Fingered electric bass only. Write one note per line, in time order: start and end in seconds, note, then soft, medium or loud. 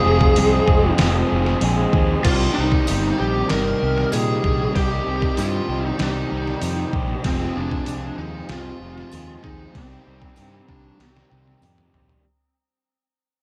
0.05 0.27 F1 medium
0.37 0.59 C2 loud
0.68 0.90 F1 medium
1.00 1.22 F1 medium
1.32 1.54 F1 medium
1.62 1.84 A#1 loud
1.93 2.15 D#2 medium
2.25 2.47 C2 medium
2.58 2.79 C2 medium
2.90 3.11 G1 medium
3.20 3.42 A#1 medium
3.51 3.72 G1 loud
3.83 4.04 C2 medium
4.13 4.35 A#2 medium
4.45 4.66 A#1 medium
4.76 4.98 C2 medium
5.07 5.29 C2 medium
5.38 5.60 G2 medium
5.68 5.91 C2 medium
6.01 6.22 C2 loud
6.32 6.54 C2 medium
6.62 6.84 F2 loud
6.93 7.15 A#1 medium
7.25 7.47 F1 loud
7.57 7.79 F1 medium
7.88 8.10 C2 medium
8.17 8.40 D#2 medium
8.50 8.72 C2 loud
8.80 9.02 F1 medium
9.12 9.34 D#2 loud
9.44 9.66 D#2 medium
9.75 9.97 C2 medium
10.06 10.28 C2 medium
10.39 10.60 G2 loud
10.69 10.91 C2 medium
11.00 11.22 C2 medium
11.32 11.54 C2 medium
11.61 11.84 F2 loud
11.93 12.15 A#1 medium